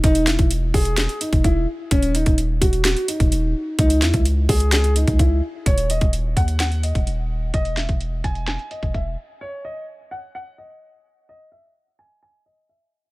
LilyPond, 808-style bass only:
\new Staff \with { instrumentName = "808-style bass" } { \clef bass \time 4/4 \key ees \phrygian \tempo 4 = 128 e,,8. e,,8. e,,8. r8 e,,8. r8 | ees,,8. ees,,8. ees,,8. r8 ees,,16 ees,,8 r8 | des,8 fes,16 des,8. des,4~ des,16 des,8. r8 | ees,,8. ees,,8. ees,4~ ees,16 ees,,16 ees,,4 |
e,,8. e,,8. e,,8. r8 e,,8. r8 | r1 | r1 | }